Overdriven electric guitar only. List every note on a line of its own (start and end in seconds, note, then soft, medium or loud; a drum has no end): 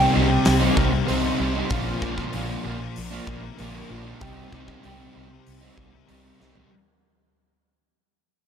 0.00 0.11 C3 medium
0.00 0.12 G3 medium
0.00 0.14 C4 loud
0.00 0.14 D#4 loud
0.12 0.60 C3 medium
0.12 0.29 G3 medium
0.12 0.29 C4 medium
0.12 0.28 D#4 medium
0.29 muted overdriven electric guitar stroke soft
0.60 0.92 G3 medium
0.60 0.92 C4 medium
0.60 0.91 D#4 medium
0.92 muted overdriven electric guitar stroke medium
1.06 1.37 C3 medium
1.06 1.38 G3 medium
1.06 1.41 C4 medium
1.06 1.40 D#4 loud
1.38 1.68 C3 medium
1.38 1.57 G3 medium
1.38 1.56 C4 medium
1.38 1.54 D#4 medium
1.55 1.70 G3 soft
1.55 1.73 C4 medium
1.55 1.68 D#4 medium
1.70 2.32 A#2 medium
1.70 2.00 D3 medium
1.70 2.01 F3 loud
1.70 2.03 A#3 medium
1.70 2.03 D4 loud
2.01 2.33 D3 medium
2.01 2.20 F3 medium
2.01 2.19 A#3 medium
2.01 2.16 D4 medium
2.17 2.36 A#3 medium
2.17 2.36 D4 medium
2.21 2.34 F3 soft
2.34 2.96 A#2 medium
2.34 2.62 D3 medium
2.34 2.64 F3 loud
2.34 2.66 A#3 loud
2.34 2.66 D4 medium
2.64 2.81 D3 medium
2.64 2.80 F3 medium
2.64 2.81 A#3 medium
2.64 2.80 D4 medium
2.81 muted overdriven electric guitar stroke soft
3.11 3.43 F3 medium
3.11 3.43 A#3 medium
3.11 3.42 D4 medium
3.43 muted overdriven electric guitar stroke soft
3.58 4.19 A#2 medium
3.58 3.88 D3 medium
3.58 3.90 F3 medium
3.58 3.92 A#3 medium
3.58 3.92 D4 loud
3.89 4.19 D3 medium
3.89 4.07 F3 medium
3.89 4.06 A#3 medium
3.89 4.03 D4 medium
4.04 4.22 A#3 medium
4.04 4.18 D4 medium
4.08 4.20 F3 medium
4.20 4.50 C3 medium
4.20 4.51 G3 medium
4.20 4.53 C4 medium
4.24 4.54 D#4 medium
4.51 4.81 C3 medium
4.51 4.69 G3 medium
4.51 4.68 C4 medium
4.51 4.66 D#4 medium
4.67 4.82 G3 medium
4.67 4.83 C4 medium
4.67 4.84 D#4 medium
4.82 5.12 C3 medium
4.82 5.13 G3 medium
4.82 5.14 C4 medium
4.82 5.15 D#4 loud
5.13 5.61 C3 medium
5.13 5.30 G3 medium
5.13 5.29 C4 medium
5.13 5.29 D#4 medium
5.30 muted overdriven electric guitar stroke soft
5.61 5.92 G3 medium
5.61 5.92 C4 medium
5.61 5.92 D#4 medium
5.93 muted overdriven electric guitar stroke soft
6.07 6.37 C3 medium
6.07 6.38 G3 loud
6.07 6.39 C4 medium
6.07 6.40 D#4 medium
6.38 6.68 C3 medium
6.38 6.57 G3 medium
6.38 6.55 C4 medium
6.38 6.53 D#4 medium
6.54 6.70 G3 medium
6.54 6.69 C4 medium
6.54 6.68 D#4 medium